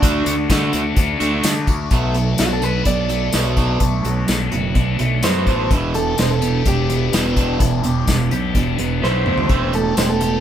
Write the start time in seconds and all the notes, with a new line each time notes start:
Already playing: D4 F#4
0.01 D2 D3 A3 D4 F#4, kick, closed hi-hat, tambourine
0.25 D2 D4 F#4, closed hi-hat, tambourine
0.49 D3 A3 D4 F#4, kick, snare, closed hi-hat, tambourine
0.72 D2 A3 D4 F#4, closed hi-hat, tambourine
0.96 D2 A3 D4 F#4, kick, closed hi-hat, tambourine
1.19 D2 D3 A3 D4 F#4, closed hi-hat, tambourine
1.43 D3 A3 D4 F#4, snare, closed hi-hat, tambourine
1.67 D2 D4 F#4, kick, closed hi-hat, tambourine
1.91 B1 B2 F#3 A3 B3, kick, closed hi-hat
2.14 B2 F#3 F#4, closed hi-hat
2.38 B1 B2 F#3 D4 F#4, snare, closed hi-hat, tambourine
2.53 A4
2.62 B2 F#3 F#4 B4, closed hi-hat
2.85 B1 B2 F#3 D4 D5, kick, closed hi-hat
3.09 B2 F#3 A3, closed hi-hat
3.33 B1 B2 F#3 B3 F#4, snare, closed hi-hat, tambourine
3.57 B2 F#3 B3 D4, kick, closed hi-hat
3.80 B1 B2 F#3 A3, kick, closed hi-hat
4.04 B1 B2 F#3 F#4, closed hi-hat
4.28 B1 B2 F#3 D4, snare, closed hi-hat, tambourine
4.52 F#1 B2 F#3 F#4, closed hi-hat
4.75 B1 B2 F#3 D4, kick, closed hi-hat
4.99 B1 B2 F#3 A3, closed hi-hat
5.23 F#2 B2 F#3 B3 F#4 C5, snare, closed hi-hat, tambourine
5.47 A1 B2 F#3 B3 D4, kick, closed hi-hat
5.71 E1 E2 B2 E3, kick, closed hi-hat
5.94 E2 B2 G4 A4, closed hi-hat
6.18 E1 E2 B2 D4 C5, snare, closed hi-hat, tambourine
6.31 A4
6.42 E2 B2 G4, closed hi-hat
6.65 E1 E2 B2 D4 G4, kick, closed hi-hat
6.90 E2 B2 B3, closed hi-hat
7.13 E1 E2 B2 E3 G4, snare, closed hi-hat, tambourine
7.36 E2 B2 E3 D4, kick, closed hi-hat
7.60 E1 E2 B2 E3, kick, closed hi-hat
7.83 E1 E2 B2 G4, closed hi-hat
8.07 E1 E2 B2 D4, kick, snare, closed hi-hat, tambourine
8.31 B1 E2 B2 G4, closed hi-hat
8.55 E1 E2 B2 D4, kick, closed hi-hat
8.78 E1 E2 B2 B3, closed hi-hat
9.02 B1 E2 B2 E3 G4 C5, snare
9.25 D2 E2 B2 E3 D4, mid tom
9.38 floor tom
9.49 E1 E3 A3 C4, kick, closed hi-hat
9.73 E3 A3 G4 A4, closed hi-hat
9.97 E1 E3 A3 C4 C5, snare, closed hi-hat, tambourine
10.09 A4
10.20 E3 A3 G4, closed hi-hat